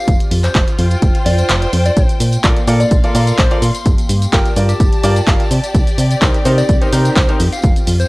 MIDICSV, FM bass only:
0, 0, Header, 1, 2, 480
1, 0, Start_track
1, 0, Key_signature, -2, "major"
1, 0, Tempo, 472441
1, 78, Time_signature, 4, 2, 24, 8
1, 8212, End_track
2, 0, Start_track
2, 0, Title_t, "FM bass"
2, 0, Program_c, 0, 39
2, 79, Note_on_c, 0, 29, 100
2, 170, Note_off_c, 0, 29, 0
2, 317, Note_on_c, 0, 41, 77
2, 493, Note_off_c, 0, 41, 0
2, 559, Note_on_c, 0, 29, 99
2, 650, Note_off_c, 0, 29, 0
2, 798, Note_on_c, 0, 41, 99
2, 974, Note_off_c, 0, 41, 0
2, 1039, Note_on_c, 0, 29, 99
2, 1130, Note_off_c, 0, 29, 0
2, 1277, Note_on_c, 0, 41, 94
2, 1453, Note_off_c, 0, 41, 0
2, 1517, Note_on_c, 0, 29, 99
2, 1693, Note_off_c, 0, 29, 0
2, 1758, Note_on_c, 0, 41, 105
2, 1934, Note_off_c, 0, 41, 0
2, 1999, Note_on_c, 0, 34, 100
2, 2090, Note_off_c, 0, 34, 0
2, 2237, Note_on_c, 0, 46, 78
2, 2413, Note_off_c, 0, 46, 0
2, 2479, Note_on_c, 0, 34, 93
2, 2570, Note_off_c, 0, 34, 0
2, 2717, Note_on_c, 0, 46, 100
2, 2893, Note_off_c, 0, 46, 0
2, 2958, Note_on_c, 0, 34, 99
2, 3050, Note_off_c, 0, 34, 0
2, 3197, Note_on_c, 0, 46, 88
2, 3373, Note_off_c, 0, 46, 0
2, 3439, Note_on_c, 0, 34, 91
2, 3530, Note_off_c, 0, 34, 0
2, 3677, Note_on_c, 0, 46, 91
2, 3769, Note_off_c, 0, 46, 0
2, 3918, Note_on_c, 0, 31, 103
2, 4010, Note_off_c, 0, 31, 0
2, 4157, Note_on_c, 0, 43, 80
2, 4333, Note_off_c, 0, 43, 0
2, 4398, Note_on_c, 0, 31, 97
2, 4489, Note_off_c, 0, 31, 0
2, 4637, Note_on_c, 0, 43, 100
2, 4814, Note_off_c, 0, 43, 0
2, 4878, Note_on_c, 0, 31, 96
2, 4969, Note_off_c, 0, 31, 0
2, 5118, Note_on_c, 0, 43, 94
2, 5294, Note_off_c, 0, 43, 0
2, 5358, Note_on_c, 0, 31, 95
2, 5449, Note_off_c, 0, 31, 0
2, 5598, Note_on_c, 0, 48, 89
2, 5689, Note_off_c, 0, 48, 0
2, 5838, Note_on_c, 0, 36, 100
2, 5929, Note_off_c, 0, 36, 0
2, 6077, Note_on_c, 0, 48, 84
2, 6253, Note_off_c, 0, 48, 0
2, 6318, Note_on_c, 0, 36, 96
2, 6410, Note_off_c, 0, 36, 0
2, 6558, Note_on_c, 0, 48, 101
2, 6734, Note_off_c, 0, 48, 0
2, 6798, Note_on_c, 0, 36, 102
2, 6890, Note_off_c, 0, 36, 0
2, 7038, Note_on_c, 0, 48, 94
2, 7214, Note_off_c, 0, 48, 0
2, 7279, Note_on_c, 0, 36, 97
2, 7370, Note_off_c, 0, 36, 0
2, 7518, Note_on_c, 0, 41, 86
2, 7609, Note_off_c, 0, 41, 0
2, 7759, Note_on_c, 0, 29, 103
2, 7850, Note_off_c, 0, 29, 0
2, 7998, Note_on_c, 0, 41, 81
2, 8174, Note_off_c, 0, 41, 0
2, 8212, End_track
0, 0, End_of_file